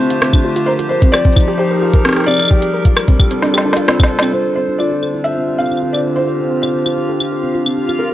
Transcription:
0.00 0.68 D3 medium
0.00 0.68 A3 medium
0.00 0.68 D4 medium
0.00 1.41 F4 medium
0.00 3.24 G4 medium
0.00 0.17 C5 medium
0.00 1.41 C5 medium
0.10 0.17 F4 medium
0.10 closed hi-hat medium
0.22 0.28 C4 medium
0.22 cross-stick loud
0.33 0.40 D4 medium
0.33 kick loud
0.33 claves medium
0.45 0.51 F4 loud
0.56 0.60 F4 medium
0.56 closed hi-hat medium
0.66 2.51 F3 medium
0.66 0.74 A#4 medium
0.66 0.71 C5 loud
0.79 0.86 F4 medium
0.79 closed hi-hat medium
0.89 0.95 A#4 medium
0.89 1.13 C5 medium
1.02 1.12 C4 medium
1.02 2.51 D#4 medium
1.02 kick loud
1.02 closed hi-hat medium
1.12 1.20 G4 medium
1.12 1.60 D5 loud
1.12 cross-stick loud
1.12 claves medium
1.25 1.31 C4 medium
1.25 kick loud
1.25 closed hi-hat soft
1.32 1.43 D#4 medium
1.32 kick loud
1.32 closed hi-hat soft
1.32 claves medium
1.40 closed hi-hat soft
1.48 1.54 G4 loud
1.48 2.51 G#4 medium
1.48 4.34 A#4 medium
1.58 1.63 G4 medium
1.58 2.01 C5 medium
1.71 1.77 A#4 medium
1.82 1.89 F4 medium
1.94 1.98 A#4 medium
1.94 kick loud
1.94 closed hi-hat medium
2.05 2.15 C4 medium
2.05 cross-stick loud
2.09 cross-stick medium
2.13 cross-stick medium
2.16 2.23 G4 medium
2.16 cross-stick medium
2.16 closed hi-hat soft
2.20 cross-stick soft
2.24 2.35 C4 medium
2.24 3.83 D5 loud
2.24 cross-stick soft
2.24 claves soft
2.31 claves soft
2.34 claves soft
2.37 closed hi-hat medium
2.37 claves medium
2.39 2.46 D#4 medium
2.39 claves medium
2.42 claves medium
2.45 claves medium
2.48 4.34 G3 medium
2.48 2.57 G4 loud
2.48 kick medium
2.48 claves medium
2.62 2.66 G4 medium
2.62 closed hi-hat medium
2.72 8.00 D4 medium
2.72 2.80 A#4 medium
2.77 5.30 A4 medium
2.83 8.14 F4 medium
2.83 2.92 F4 medium
2.83 kick loud
2.83 closed hi-hat medium
2.97 3.01 A#4 medium
2.97 cross-stick loud
2.97 claves medium
3.08 3.18 C4 medium
3.08 kick loud
3.08 closed hi-hat medium
3.19 3.26 G4 medium
3.19 kick loud
3.19 claves medium
3.31 3.38 C4 medium
3.31 8.14 C5 medium
3.31 closed hi-hat medium
3.42 3.49 D4 medium
3.42 snare medium
3.54 3.60 G4 loud
3.54 snare medium
3.54 closed hi-hat soft
3.54 claves medium
3.65 3.69 D4 loud
3.73 3.87 F4 loud
3.73 snare medium
3.73 closed hi-hat medium
3.88 3.98 C4 medium
3.88 cross-stick loud
3.88 snare medium
4.00 4.06 C4 loud
4.00 kick loud
4.00 snare medium
4.00 closed hi-hat soft
4.00 claves medium
4.11 4.18 C4 medium
4.19 4.27 C4 loud
4.19 snare loud
4.19 closed hi-hat medium
4.19 claves soft
4.33 8.00 D3 medium
4.33 8.14 F4 medium
4.33 4.54 C5 medium
4.45 4.52 F4 medium
4.55 8.00 C4 medium
4.55 4.64 C4 medium
4.55 4.80 C5 medium
4.68 4.75 D4 medium
4.78 4.86 F4 medium
4.78 5.22 D5 medium
4.78 claves medium
5.03 5.09 A4 medium
5.03 claves medium
5.14 5.21 E4 medium
5.24 5.30 A4 medium
5.24 5.60 E5 loud
5.31 8.14 G4 medium
5.37 5.47 C4 medium
5.49 5.55 F4 medium
5.58 5.67 C4 medium
5.58 5.91 F5 medium
5.58 claves soft
5.66 claves soft
5.71 5.78 D4 medium
5.71 claves soft
5.77 claves soft
5.83 5.89 F4 loud
5.93 5.98 D5 medium
5.93 claves medium
6.06 6.12 A4 medium
6.16 6.24 E4 medium
6.16 6.60 C5 medium
6.29 6.33 A4 medium
6.40 6.50 C4 medium
6.52 6.58 F4 medium
6.62 6.70 C4 medium
6.62 7.50 C5 medium
6.62 claves medium
6.75 6.81 D4 medium
6.86 6.93 F4 medium
6.86 claves medium
6.97 7.01 F4 medium
7.09 7.15 A4 medium
7.20 7.27 E4 medium
7.20 claves medium
7.32 7.36 A4 medium
7.43 7.53 C4 medium
7.55 7.61 F4 medium
7.66 7.73 C4 medium
7.66 claves medium
7.78 7.84 D4 medium
7.89 7.96 F4 loud
7.89 claves soft
7.99 8.14 F3 medium
7.99 8.04 G4 medium
7.99 8.14 A#4 medium

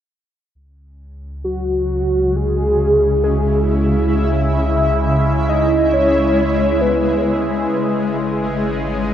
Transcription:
0.55 7.67 C#2 medium
0.55 7.72 C#3 medium
0.55 9.14 C#3 medium
0.55 9.14 G#3 medium
1.17 9.14 G#3 medium
1.44 2.37 F#4 medium
1.98 7.72 E4 medium
2.36 3.23 G#4 loud
3.23 3.87 G#4 medium
5.49 5.95 D#5 loud
5.93 6.83 C#5 loud
6.81 7.49 B4 medium
7.71 9.14 G#1 medium
8.33 9.14 D#4 medium
8.40 9.14 B4 medium
8.48 9.14 G#4 medium

